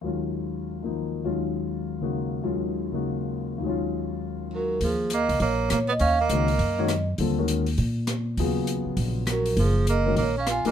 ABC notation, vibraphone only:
X:1
M:4/4
L:1/8
Q:"Swing" 1/4=202
K:Ebm
V:1 name="Vibraphone"
z8 | z8 | z8 | z6 B2 |
A2 e2 d2 d z | f e6 z | z8 | z6 B2 |
A2 e2 d f a z |]